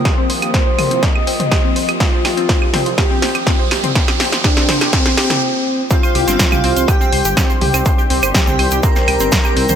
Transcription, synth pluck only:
\new Staff \with { instrumentName = "Synth pluck" } { \time 4/4 \key c \minor \tempo 4 = 123 g'16 c'16 c''16 g'16 c'16 c''16 g'16 c'16 c''16 g'16 c'16 c''16 g'16 c'16 c''16 g'16 | c'16 c''16 g'16 c'16 c''16 g'16 c'16 c''16 g'16 c'16 c''16 g'16 c'16 c''16 g'16 c'16 | c''16 g'16 c'16 c''16 g'16 c'16 c''16 g'16 c'16 c''16 g'16 g'16 r4 | <c' c''>16 <c'' c'''>16 <g' g''>16 <c' c''>16 <c'' c'''>16 <g' g''>16 <c' c''>16 <c'' c'''>16 <g' g''>16 <c' c''>16 <c'' c'''>16 <g' g''>16 <c' c''>16 <c'' c'''>16 <g' g''>16 <c' c''>16 |
<c'' c'''>16 <g' g''>16 <c' c''>16 <c'' c'''>16 <g' g''>16 <c' c''>16 <c'' c'''>16 <g' g''>16 <c' c''>16 <c'' c'''>16 <g' g''>16 <c' c''>16 <c'' c'''>16 <g' g''>16 <c' c''>16 <c'' c'''>16 | }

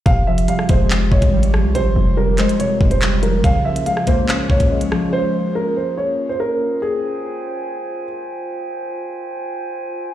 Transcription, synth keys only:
\new Staff \with { instrumentName = "Synth keys" } { \clef bass \time 4/4 \key f \minor \tempo 4 = 142 c8 f8 g8 aes8 c8 aes8 g8 f8 | c8 f8 g8 aes8 c8 aes8 g8 f8 | des8 f8 aes8 bes8 des'8 bes8 aes8 f8~ | f2 r2 |
r1 | r1 | }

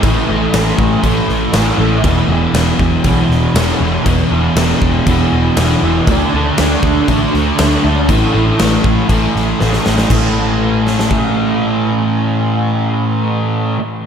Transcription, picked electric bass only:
\new Staff \with { instrumentName = "Picked electric bass" } { \clef bass \time 4/4 \key e \dorian \tempo 4 = 119 a,,8 a,,8 a,,8 a,,8 a,,8 a,,8 a,,8 a,,8 | e,,8 e,,8 e,,8 e,,8 b,,8 e,,8 e,,8 e,,8 | e,,8 e,,8 e,,8 e,,8 e,,8 e,,8 e,,8 e,,8 | d,8 d,8 d,8 d,8 a,,8 d,8 d,8 d,8 |
a,,8 a,,8 a,,8 a,,8 a,,8 a,,8 a,,8 a,,8 | a,,1~ | a,,1 | }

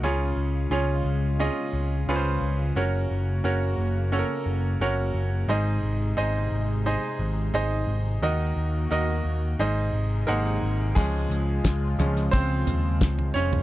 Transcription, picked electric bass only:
\new Staff \with { instrumentName = "Picked electric bass" } { \clef bass \time 4/4 \key des \major \tempo 4 = 88 des,8 des,8 des,8 des,8. r16 des,8 des,8 des,8 | ges,,8 ges,,8 ges,,8 ges,,8. r16 ges,,8 ges,,8 ges,,8 | aes,,8 aes,,8 aes,,8 aes,,8. r16 aes,,8 aes,,8 aes,,8 | ees,8 ees,8 ees,8 ees,8 aes,,8 aes,,8 aes,,8 aes,,8 |
des,8 des,8 des,8 des,8 des,8 ees,8 des,8 f,,8 | }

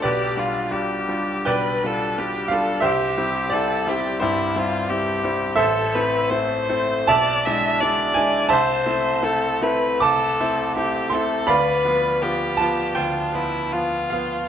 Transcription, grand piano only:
\new Staff \with { instrumentName = "Grand piano" } { \time 4/4 \key g \mixolydian \tempo 4 = 83 << { <g' b' d''>2 <b' d'' g''>4. f''8 | <g' c'' e''>4 d''4 <e' g' c''>4 r4 | \key a \minor <a' c'' e''>2 <d'' e'' a''>4. gis''8 | <c'' e'' a''>2 <a'' d'''>4. c'''8 |
<d'' f'' b''>4. a''8 g''4. f''8 | } \\ { b,,8 <g d' f'>8 <g d' f'>8 <g d' f'>8 b,,8 <g d' f'>8 <g d' f'>8 <g d' f'>8 | c,8 <g c' e'>8 <g c' e'>8 <g c' e'>8 g,8 <g c' e'>8 <g c' e'>8 <g c' e'>8 | a,,8 <a c' e'>8 <a c' e'>8 <a c' e'>8 b,,8 <gis d' e'>8 <gis d' e'>8 <gis d' e'>8 | c,8 <a c' e'>8 <a c' e'>8 <a c' e'>8 c,8 <a c' e'>8 <a c' e'>8 <a c' e'>8 |
d,8 <f b f'>8 <f b f'>8 <f b f'>8 d,8 <f b f'>8 <f b f'>8 <f b f'>8 | } >> }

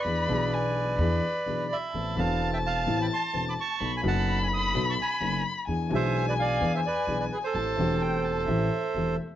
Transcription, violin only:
\new Staff \with { instrumentName = "Violin" } { \time 4/4 \key a \minor \tempo 4 = 128 b''4 gis''4 b''4. r8 | a''1 | b''1 | gis''1 |
a''4 g''8 a''8 e''4. r8 | }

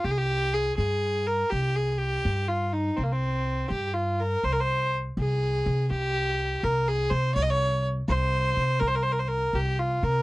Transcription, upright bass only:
\new Staff \with { instrumentName = "Upright bass" } { \clef bass \time 6/8 \tempo 4. = 82 c,4. g,4. | c,4. g,4. | c,4. g,4. | c,4. c,4 c8 |
c,4. c,4 c8 | c,4. c,4 c8 | c,4. c,4 c8 | }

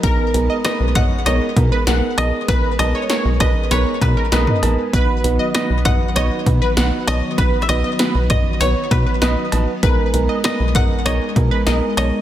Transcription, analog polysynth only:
\new Staff \with { instrumentName = "Analog polysynth" } { \time 4/4 \key gis \minor \tempo 4 = 98 ais'8 r16 dis''16 b'8 dis''16 r16 cis''16 r8 b'16 fis''16 r16 dis''16 r16 | b'8 r16 cis''16 cis''8 b'16 r16 b'16 r8 ais'16 dis''8. r16 | b'8 r16 dis''16 b'8 dis''16 r16 cis''16 r8 b'16 fis''16 r16 dis''16 r16 | b'8 r16 dis''16 b'8 dis''16 r16 cis''16 r8 b'16 dis''8. r16 |
b'8 r16 dis''16 b'8 dis''16 r16 cis''16 r8 b'16 dis''16 r16 cis''16 r16 | }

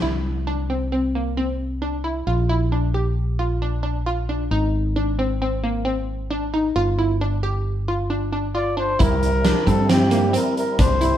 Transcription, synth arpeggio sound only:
\new Staff \with { instrumentName = "Synth arpeggio sound" } { \time 5/4 \key c \mixolydian \tempo 4 = 134 e'4 d'8 c'8 c'8 bes8 c'4 d'8 e'8 | f'8 e'8 d'8 g'4 f'8 d'8 d'8 f'8 d'8 | ees'4 d'8 c'8 c'8 bes8 c'4 d'8 ees'8 | f'8 e'8 d'8 g'4 f'8 d'8 d'8 f'8 d'8 |
e'4 d'8 c'8 c'8 bes8 c'4 d'8 e'8 | }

